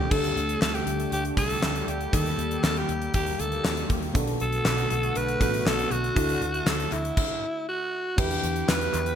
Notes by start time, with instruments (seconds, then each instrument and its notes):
Already playing: fm electric piano D3 C4 D4 G4 A4, analog synth pad D4, alto saxophone G4
0.10 picked electric bass D2, analog synth pad D3 G3 A3 G4, fm electric piano D3 A3 D4 G4 A4, alto saxophone A4, kick, crash
0.24 closed hi-hat
0.36 picked electric bass D2, closed hi-hat
0.49 closed hi-hat
0.62 picked electric bass D2, alto saxophone A4, snare, clap
0.75 alto saxophone G4, closed hi-hat
0.87 picked electric bass D2, closed hi-hat
1.00 closed hi-hat
1.12 picked electric bass D2, alto saxophone G4, closed hi-hat
1.25 closed hi-hat
1.37 picked electric bass C2, alto saxophone A4, kick, closed hi-hat
1.50 closed hi-hat
1.63 picked electric bass D2, snare, clap
1.75 closed hi-hat
1.87 picked electric bass D2, alto saxophone G4, closed hi-hat
2.01 closed hi-hat
2.12 picked electric bass D#2, analog synth pad D#3 A#3, fm electric piano D#3 A#3 D#4 G4, alto saxophone A4, kick, closed hi-hat
2.26 closed hi-hat
2.38 picked electric bass D#2, closed hi-hat
2.51 closed hi-hat
2.64 picked electric bass D#2, alto saxophone A4, snare, clap
2.76 alto saxophone G4, closed hi-hat
2.89 picked electric bass D#2, closed hi-hat
3.02 closed hi-hat
3.14 picked electric bass D#2, alto saxophone G4, kick, closed hi-hat
3.26 closed hi-hat
3.39 picked electric bass D2, alto saxophone A4, closed hi-hat
3.52 closed hi-hat
3.65 picked electric bass D#2, snare, clap
3.77 closed hi-hat
3.90 picked electric bass D#2, kick, closed hi-hat
4.02 closed hi-hat
4.14 picked electric bass B1, fm electric piano B2 B3 D4 F#4 A4, analog synth pad D3 A3 B3 F#4, kick, closed hi-hat
4.27 closed hi-hat
4.40 picked electric bass B1, alto saxophone A4, closed hi-hat
4.52 closed hi-hat
4.65 picked electric bass B1, snare, clap
4.78 closed hi-hat
4.90 picked electric bass B1, closed hi-hat
5.03 closed hi-hat
5.15 picked electric bass B1, alto saxophone B4, closed hi-hat
5.28 closed hi-hat
5.40 picked electric bass A1, fm electric piano B3 D4 F#4 A4, alto saxophone B4, kick, closed hi-hat
5.54 closed hi-hat
5.66 picked electric bass B1, alto saxophone A4, snare, clap
5.79 closed hi-hat
5.91 picked electric bass B1, alto saxophone F#4, closed hi-hat
6.04 closed hi-hat
6.15 picked electric bass D2, fm electric piano D3 D4 E4 F#4 A4, analog synth pad A3 E4, kick, closed hi-hat
6.29 closed hi-hat
6.42 picked electric bass D2, closed hi-hat
6.54 closed hi-hat
6.66 picked electric bass D2, alto saxophone A4, snare, clap, tambourine
6.80 closed hi-hat
6.92 picked electric bass D2, alto saxophone E4, clap, closed hi-hat
7.05 closed hi-hat
7.17 kick, crash
7.69 alto saxophone F#4
8.17 picked electric bass E2, analog synth pad D3 B3 E4 G4, fm electric piano E3 D4 E4 G4 B4, alto saxophone G4, kick, crash
8.31 closed hi-hat
8.43 picked electric bass E2, closed hi-hat
8.56 closed hi-hat
8.68 picked electric bass E2, alto saxophone B4, snare, clap, tambourine
8.81 closed hi-hat
8.94 picked electric bass E2, clap, closed hi-hat
9.06 closed hi-hat